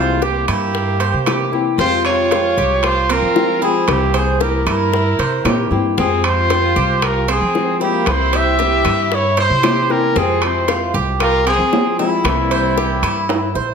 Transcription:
Already playing: upright bass C2, nylon-string guitar C3 E3 A#3 C4 E4, violin section G#3, trumpet F4, cuban tres C5
0.22 violin section A#3, nylon-string guitar A#3 C4 E4, cuban tres G4, trumpet G4, high bongo
0.48 upright bass G2, violin section A#3, cuban tres E4, trumpet G4, high bongo, high timbale, claves
0.74 muted nylon-string guitar stroke, high bongo
1.00 cuban tres C5, high bongo, high timbale
1.13 upright bass C3
1.26 nylon-string guitar E3 A#3 C4 E4, cuban tres G4, high bongo, low bongo, high timbale, claves
1.52 nylon-string guitar E3 A#3 C4 E4, high bongo
1.78 upright bass F2, nylon-string guitar C3 F3 G#3 C4 G4, cuban tres C4, violin section F4, trumpet C5, high bongo
2.05 violin section F4, trumpet C#5, high timbale, claves
2.31 nylon-string guitar F3 G#3 G4, cuban tres F4, high bongo, high timbale
2.57 upright bass C2, cuban tres G4, high bongo
2.83 violin section F4, trumpet C5, muted nylon-string guitar stroke, high bongo, high timbale, claves
3.09 cuban tres C4, violin section F4, trumpet A#4, high bongo, high timbale
3.22 upright bass F3
3.35 nylon-string guitar F3 G#3 C4 G4, high bongo, low bongo
3.62 nylon-string guitar F3 G#3 C4 G4, violin section C4, cuban tres E4, trumpet G#4, high bongo
3.87 upright bass C2, nylon-string guitar C3 E3 A#3 C4 E4, violin section A#3, trumpet G4, high bongo, high timbale, claves
4.14 violin section C4, trumpet G#4, cuban tres C5, high timbale
4.40 nylon-string guitar E3 A#3 C4 E4, violin section E4, cuban tres G4, trumpet A#4, high bongo
4.66 upright bass G2, cuban tres E4, violin section E4, trumpet A#4, high bongo, high timbale, claves
4.92 muted nylon-string guitar stroke, high bongo
5.19 upright bass C3, cuban tres C5, high bongo, high timbale
5.45 upright bass A#2, nylon-string guitar E3 A#3 C4 E4, cuban tres G4, high bongo, low bongo, high timbale, low timbale, claves
5.71 upright bass G2, nylon-string guitar E3 A#3 C4 E4, high bongo
5.98 upright bass F2, nylon-string guitar C3 F3 G#3 C4 G4, cuban tres C4, violin section C4, trumpet G#4, high bongo
6.24 violin section F4, trumpet C5, high timbale, claves
6.49 nylon-string guitar F3 G#3 C4 G4, cuban tres F4, high bongo, high timbale
6.76 upright bass C2, cuban tres G4, high bongo
7.02 violin section F4, trumpet A#4, muted nylon-string guitar stroke, high bongo, high timbale, claves
7.28 cuban tres C4, violin section C4, trumpet G#4, high bongo, high timbale
7.41 upright bass F3
7.54 nylon-string guitar F3 G#3 C4 G4, high bongo, low bongo
7.80 nylon-string guitar F3 G#3 C4 G4, violin section A#3, cuban tres E4, trumpet G4, high bongo
8.06 upright bass C2, nylon-string guitar C3 E3 A#3 C4 E4, violin section E4, trumpet C5, high bongo, high timbale, claves
8.33 violin section G4, cuban tres C5, trumpet E5, high timbale
8.59 nylon-string guitar E3 A#3 C4 E4, cuban tres G4, high bongo
8.84 upright bass G2, cuban tres E4, high bongo, high timbale, claves
9.11 violin section E4, trumpet C#5, muted nylon-string guitar stroke, high bongo
9.37 violin section E4, cuban tres C5, trumpet C5, high bongo, high timbale
9.50 upright bass C3
9.63 nylon-string guitar E3 A#3 C4 E4, cuban tres G4, high bongo, low bongo, high timbale, low timbale, claves
9.89 nylon-string guitar E3 A#3 C4 E4, violin section C#4, trumpet A#4, high bongo
10.16 upright bass F2, nylon-string guitar C3 F3 G#3 C4 G4, cuban tres C4, violin section C4, trumpet G#4, high bongo
10.42 violin section E4, trumpet C5, high timbale, claves
10.68 nylon-string guitar G#3 C4 G4, cuban tres F4, high bongo, high timbale
10.94 upright bass C2, cuban tres G4, high bongo
11.20 violin section F4, trumpet A#4, muted nylon-string guitar stroke, high bongo, high timbale, claves
11.47 cuban tres C4, violin section C4, trumpet G#4, high bongo, high timbale
11.59 upright bass F3
11.73 nylon-string guitar F3 G#3 C4 G4, high bongo, low bongo, low timbale
11.98 nylon-string guitar F3 G#3 C4 G4, violin section G3, cuban tres E4, trumpet E4, high bongo
12.24 upright bass C2, nylon-string guitar C3 E3 A#3 C4 E4, high bongo, high timbale, claves
12.51 cuban tres C5, high timbale
12.77 nylon-string guitar E3 A#3 C4 E4, cuban tres G4, high bongo
13.02 upright bass G2, cuban tres E4, high bongo, high timbale, claves
13.29 muted nylon-string guitar stroke, high bongo, high timbale
13.55 upright bass A#1, cuban tres C5, high bongo

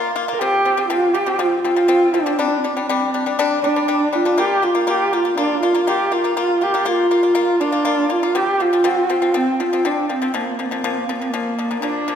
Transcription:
Already playing: pipa A#3 F4
0.16 pipa A#3 F4
0.28 pipa A#3 F4
0.33 horsehead fiddle A#4
0.39 pipa F3 C4, horsehead fiddle G4
0.65 pipa F3 C4
0.77 pipa F3 C4
0.88 pipa F3 C4, horsehead fiddle F4
1.13 pipa F3 C4, horsehead fiddle G4
1.26 pipa F3 C4
1.38 pipa F3 C4, horsehead fiddle F4
1.61 pipa F3, horsehead fiddle F4
1.65 pipa C4
1.76 pipa F3 C4
1.88 pipa F3 C4
2.13 pipa F3 C4, horsehead fiddle D4
2.26 pipa F3 C4
2.39 pipa G3 D4, horsehead fiddle C4
2.47 horsehead fiddle D4
2.57 horsehead fiddle C4
2.64 pipa G3 D4, horsehead fiddle D4
2.72 horsehead fiddle C4
2.77 pipa G3 D4, horsehead fiddle D4
2.86 pipa G3 D4, horsehead fiddle C4
3.14 pipa G3 D4
3.26 pipa G3 D4
3.39 pipa G3 D4
3.63 pipa G3 D4, horsehead fiddle D4
3.76 pipa G3 D4
3.88 pipa G3 D4
4.13 pipa G3 D4, horsehead fiddle F4
4.25 pipa G3 D4
4.38 pipa A#3 F4, horsehead fiddle G4
4.62 pipa A#3 F4, horsehead fiddle F4
4.75 pipa A#3 F4
4.87 pipa A#3 F4, horsehead fiddle G4
5.13 pipa A#3 F4, horsehead fiddle F4
5.25 pipa A#3 F4
5.37 pipa A#3 F4, horsehead fiddle D4
5.61 pipa A#3 F4, horsehead fiddle F4
5.74 pipa A#3 F4
5.87 pipa A#3 F4, horsehead fiddle G4
6.12 pipa A#3 F4, horsehead fiddle F4
6.24 pipa A#3 F4
6.36 pipa A#3 F4, horsehead fiddle F4
6.61 pipa A#3 F4, horsehead fiddle G4
6.74 pipa A#3 F4
6.85 pipa A#3 F4, horsehead fiddle F4
7.11 pipa A#3 F4
7.23 pipa A#3 F4
7.35 pipa A#3 F4
7.60 pipa A#3 F4, horsehead fiddle D4
7.72 pipa A#3 F4
7.85 pipa A#3 F4
8.10 pipa A#3 F4, horsehead fiddle F4
8.23 pipa A#3 F4
8.35 pipa F3 C4, horsehead fiddle G4
8.60 pipa F3 C4, horsehead fiddle F4
8.73 pipa F3 C4
8.84 pipa F3 C4
9.09 pipa F3 C4
9.22 pipa F3 C4
9.34 pipa F3 C4, horsehead fiddle C4
9.60 pipa F3 C4, horsehead fiddle F4
9.73 pipa F3 C4
9.85 pipa F3 C4, horsehead fiddle D4
10.09 pipa F3 C4, horsehead fiddle C4
10.22 pipa F3 C4
10.34 pipa A#2 F3, horsehead fiddle A#3
10.44 horsehead fiddle C4
10.50 horsehead fiddle A#3
10.58 pipa A#2 F3, horsehead fiddle C4
10.65 horsehead fiddle A#3
10.71 pipa A#2 F3, horsehead fiddle C4
10.81 pipa A#2 F3, horsehead fiddle A#3
10.89 horsehead fiddle C4
10.97 horsehead fiddle A#3
11.06 pipa A#2 F3, horsehead fiddle C4
11.11 horsehead fiddle A#3
11.19 pipa A#2 F3, horsehead fiddle C4
11.29 horsehead fiddle A#3
11.34 pipa A#2 F3
11.59 pipa A#2 F3
11.71 pipa A#2 F3
11.82 pipa A#2 F3, horsehead fiddle D4, viola D4
12.08 pipa A#2 F3

